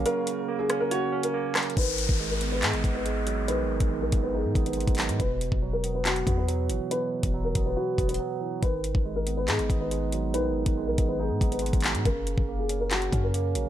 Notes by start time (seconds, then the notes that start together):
Already playing: C#3 F#3 A#3 C#4 F#4 C#5
0.05 C#3 A#4, closed hi-hat
0.27 closed hi-hat
0.49 A#3
0.59 G#4
0.70 C#4, cross-stick, closed hi-hat
0.80 A#4
0.91 F#4 C#5, closed hi-hat
1.12 C#4
1.23 A#4, closed hi-hat
1.34 A#3
1.55 F#3, cross-stick, clap, closed hi-hat
1.63 closed hi-hat
1.70 closed hi-hat
1.77 G#1 D#3 B4, kick, closed hi-hat, downlifter
1.98 closed hi-hat
2.09 G#1, kick
2.20 G#3
2.30 A#4
2.41 B3, closed hi-hat
2.52 B4
2.63 G#2 D#4 G#4, clap, closed hi-hat
2.73 G#1, closed hi-hat
2.84 G#1 B3, kick, closed hi-hat
2.95 B4
3.05 G#3, closed hi-hat
3.27 F#3, closed hi-hat
3.48 A#1 D#3 B4, closed hi-hat
3.64 G#1
3.80 G#1, kick, closed hi-hat
3.91 G#3
4.02 A#1 A#4
4.12 G#1 B3, kick, closed hi-hat
4.23 B4
4.34 D#4 G#4
4.45 G#2
4.55 G#1 B3, kick, closed hi-hat
4.66 B4, closed hi-hat
4.73 G#3, closed hi-hat
4.80 closed hi-hat
4.88 G#1, kick, closed hi-hat
4.95 F#3, clap, closed hi-hat, open hi-hat
5.02 closed hi-hat
5.09 G#2, closed hi-hat
5.20 E1 B2 B4, kick, closed hi-hat
5.41 closed hi-hat
5.52 E1, kick
5.62 F#3
5.73 A#4
5.84 B3, closed hi-hat
5.95 B4
6.05 F#4 B4, clap, closed hi-hat
6.16 closed hi-hat
6.27 E2 B3, kick, closed hi-hat
6.38 B4
6.48 F#3, closed hi-hat
6.69 G#1 E3, closed hi-hat
6.91 B2 B4, closed hi-hat
7.23 E1, kick, closed hi-hat
7.34 F#3
7.45 A#4
7.55 E1 B3, kick, closed hi-hat
7.66 B4
7.77 F#4 B4
7.98 E1 B3, kick, closed hi-hat
8.09 B4, closed hi-hat
8.14 closed hi-hat
8.20 F#3
8.41 E3
8.62 G#1 D#3 B4, kick, closed hi-hat
8.84 closed hi-hat
8.95 G#1, kick
9.05 G#3
9.16 A#4
9.27 B3, closed hi-hat
9.37 B4
9.48 G#2 D#4 G#4, clap, closed hi-hat
9.59 G#1, closed hi-hat
9.69 G#1 B3, kick, closed hi-hat
9.81 B4
9.91 G#3, closed hi-hat
10.12 F#3, closed hi-hat
10.34 A#1 D#3 B4, closed hi-hat
10.50 G#1
10.66 G#1, kick, closed hi-hat
10.77 G#3
10.87 A#1 A#4
10.98 G#1 B3, kick, closed hi-hat
11.09 B4
11.19 D#4 G#4
11.30 G#2
11.41 G#1 B3, kick, closed hi-hat
11.52 B4, closed hi-hat
11.59 G#3, closed hi-hat
11.66 closed hi-hat
11.73 G#1, kick, closed hi-hat
11.80 F#3, clap, closed hi-hat, open hi-hat
11.88 closed hi-hat
11.95 G#2, closed hi-hat
12.05 F#1 C#3 A#4, kick, closed hi-hat
12.27 closed hi-hat
12.38 F#1, kick
12.48 A#3
12.59 G#4
12.69 C#4, closed hi-hat
12.80 A#4
12.91 F#4 C#5, clap, closed hi-hat
13.02 closed hi-hat
13.12 F#2 C#4, kick, closed hi-hat
13.23 A#4
13.34 A#3, closed hi-hat
13.55 A#1 F#3, closed hi-hat